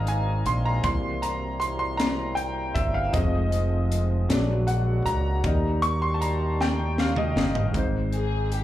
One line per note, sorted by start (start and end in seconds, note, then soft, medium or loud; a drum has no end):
0.00 0.42 G#1 medium
0.00 0.80 D#3 medium
0.00 0.80 G#3 soft
0.00 0.82 G#3 medium
0.00 0.80 C4 medium
0.00 4.26 C4 medium
0.00 0.80 D#4 medium
0.00 0.86 D5 medium
0.00 0.86 D#5 medium
0.00 0.86 F5 medium
0.00 0.08 G#5 medium
0.00 0.65 A#5 medium
0.07 0.17 G#5 medium
0.07 closed hi-hat soft
0.46 0.81 A#1 medium
0.46 0.66 C6 medium
0.46 closed hi-hat soft
0.65 0.85 A#5 medium
0.83 2.72 C2 medium
0.83 3.10 E3 soft
0.83 3.10 G3 soft
0.83 3.12 G3 medium
0.83 3.10 A#3 medium
0.83 3.12 A#3 medium
0.83 3.12 E4 medium
0.83 1.20 C6 loud
0.83 kick medium
0.83 closed hi-hat medium
1.22 1.62 A#5 medium
1.22 closed hi-hat medium
1.60 1.78 C6 medium
1.60 closed hi-hat medium
1.79 1.97 C6 medium
1.97 2.38 A#5 medium
1.97 snare medium
1.97 closed hi-hat medium
2.35 2.76 G5 medium
2.35 closed hi-hat soft
2.75 3.11 G1 medium
2.75 2.95 E5 medium
2.75 kick medium
2.75 closed hi-hat soft
2.94 3.14 F5 medium
3.12 4.25 F1 medium
3.12 3.64 F3 medium
3.12 4.29 F3 medium
3.12 3.65 G#3 medium
3.12 4.29 G#3 medium
3.12 3.65 C4 medium
3.12 4.29 F4 medium
3.12 4.25 D#5 medium
3.12 kick loud
3.12 closed hi-hat medium
3.52 closed hi-hat soft
3.92 closed hi-hat soft
4.29 5.02 A#1 medium
4.29 4.80 F#3 medium
4.29 4.80 G#3 medium
4.29 5.44 G#3 medium
4.29 7.72 A#3 medium
4.29 5.43 D4 medium
4.29 4.81 D4 medium
4.29 5.43 F#4 medium
4.29 snare medium
4.29 closed hi-hat medium
4.67 5.07 F#5 medium
4.67 closed hi-hat soft
5.06 5.41 C#2 medium
5.06 5.79 A#5 loud
5.06 closed hi-hat soft
5.44 7.32 D#2 medium
5.44 6.55 G3 medium
5.44 7.73 G3 medium
5.44 6.56 A#3 soft
5.44 6.56 D#4 medium
5.44 7.73 D#4 medium
5.44 7.73 G4 medium
5.44 kick loud
5.44 closed hi-hat medium
5.82 6.02 C#6 loud
5.82 closed hi-hat soft
6.02 6.14 C6 loud
6.14 6.21 A5 medium
6.21 6.61 A#5 medium
6.21 closed hi-hat medium
6.61 7.00 G5 medium
6.61 snare medium
6.98 7.18 F5 medium
6.98 snare medium
7.16 7.71 D#5 medium
7.16 mid tom medium
7.36 7.71 G1 loud
7.36 snare medium
7.55 floor tom medium
7.72 8.64 G#1 medium
7.72 8.64 G#2 soft
7.72 8.64 G#3 medium
7.72 8.64 C4 soft
7.72 kick medium
7.72 closed hi-hat medium
7.76 8.64 D#4 soft
7.76 8.64 C5 medium
8.12 8.49 G#4 medium
8.12 closed hi-hat soft
8.52 8.64 G4 medium
8.52 closed hi-hat soft